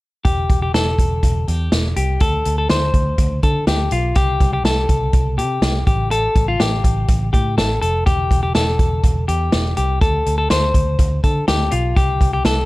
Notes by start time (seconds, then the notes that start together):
0.25 E1 G4, kick, closed hi-hat
0.50 E1, kick, closed hi-hat
0.62 G4
0.74 E1 A4, snare, closed hi-hat
0.99 E1, kick, closed hi-hat
1.23 E1, kick, closed hi-hat
1.47 E2 G4, closed hi-hat
1.72 E1, snare, closed hi-hat
1.96 C2 G4, closed hi-hat
2.20 D2 A4, kick, closed hi-hat
2.45 D2, closed hi-hat
2.58 A4
2.69 D2 C5, snare, closed hi-hat
2.94 D2, kick, closed hi-hat
3.18 D2, kick, closed hi-hat
3.43 D3 A4, kick, closed hi-hat
3.67 D2 G4, snare, closed hi-hat
3.91 B1 F4, closed hi-hat
4.15 C2 G4, kick, closed hi-hat
4.40 C2, kick, closed hi-hat
4.53 G4
4.64 C2 A4, snare, closed hi-hat
4.89 C2, kick, closed hi-hat
5.13 C2, kick, closed hi-hat
5.37 C3 G4, closed hi-hat
5.62 C2, snare, closed hi-hat
5.87 A1 G4, kick, closed hi-hat
6.11 A4, closed hi-hat
6.36 A1, kick, closed hi-hat
6.48 F4
6.60 A1 G4, snare, closed hi-hat
6.84 A1, kick, closed hi-hat
7.08 A1, kick, closed hi-hat
7.33 A2 G4, kick, closed hi-hat
7.57 A1 A4, snare, closed hi-hat
7.82 F1 A4, closed hi-hat
8.06 E1 G4, kick, closed hi-hat
8.31 E1, kick, closed hi-hat
8.43 G4
8.55 E1 A4, snare, closed hi-hat
8.79 E1, kick, closed hi-hat
9.04 E1, kick, closed hi-hat
9.28 E2 G4, closed hi-hat
9.52 E1, snare, closed hi-hat
9.77 C2 G4, closed hi-hat
10.01 D2 A4, kick, closed hi-hat
10.26 D2, closed hi-hat
10.38 A4
10.50 D2 C5, snare, closed hi-hat
10.74 D2, kick, closed hi-hat
10.99 D2, kick, closed hi-hat
11.24 D3 A4, kick, closed hi-hat
11.48 D2 G4, snare, closed hi-hat
11.71 B1 F4, closed hi-hat
11.96 C2 G4, kick, closed hi-hat
12.21 C2, kick, closed hi-hat
12.33 G4
12.45 C2 A4, snare, closed hi-hat